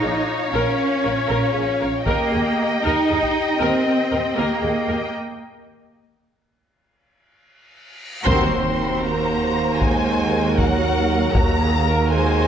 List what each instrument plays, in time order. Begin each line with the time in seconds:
Already playing: cello section D#4, french horn section F4 C#5, violin section C#5 F5
0.02 double bass section A#1, viola section G#4
0.53 double bass section A#1, cello section C#4, viola section A#4
1.04 double bass section A#1, viola section A#4
1.29 double bass section A#1, viola section A#4
1.54 double bass section A#1, viola section G#4
1.80 double bass section A#1, viola section A#4
2.06 double bass section D#2, cello section A#3, french horn section G4 D#5, viola section A#4, violin section D#5 G5, taiko
2.32 double bass section D#2, viola section G#4
2.83 double bass section D#2, cello section D#4, viola section A#4
3.08 double bass section D#2, viola section G#4
3.23 taiko
3.60 double bass section D#2, cello section C4, viola section A#4
4.11 double bass section D#2, viola section A#4
4.37 double bass section D#2, cello section A#3, viola section A#4
4.61 double bass section D#2, viola section G#4
4.88 double bass section D#2, viola section A#4
5.15 reverse cymbal
8.26 cello section D#2, double bass section D#2, tuba D#2, timpani D#3, french horn section C4, trombone section C4, violin section F#4 A#4 C6, viola section C5, taiko, impact
9.04 trombone section A#3, french horn section A#3, violin section A#5
9.80 trombone section G#3, french horn section G#3, violin section G#5, taiko
10.57 trombone section F#3, french horn section F#3, viola section A#4, violin section F#5, taiko
11.33 tuba D#2, cello section D#2, double bass section D#2, french horn section A#3, trombone section A#3, violin section F#4 A#4 A#5, viola section F#4, taiko
11.60 viola section G#4
11.86 viola section A#4
12.11 trombone section G#3, french horn section G#3, viola section C5, violin section G#5